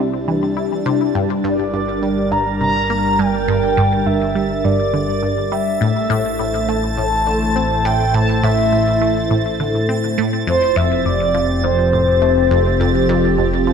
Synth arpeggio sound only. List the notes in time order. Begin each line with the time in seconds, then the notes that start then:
0.00 C3
0.28 E3
0.57 E4
0.86 C3
1.15 G2
1.44 G2
1.73 G2
2.02 G3
2.32 G2
2.61 C3
2.90 A#3
3.19 G2
3.48 G2
3.77 G2
4.06 G2
4.35 G3
4.65 G2
4.94 D3
5.23 G2
5.52 G3
5.81 A2
6.10 A2
6.39 A2
6.68 A3
6.98 A2
7.27 D3
7.56 C4
7.85 A2
8.14 A2
8.43 A2
8.72 A2
9.01 A3
9.31 A2
9.60 D3
9.89 C4
10.18 A2
10.47 F2
10.76 F2
11.05 F2
11.34 F3
11.64 F2
11.93 A2
12.22 A3
12.51 F2
12.80 F2
13.09 F2
13.38 F2
13.67 F3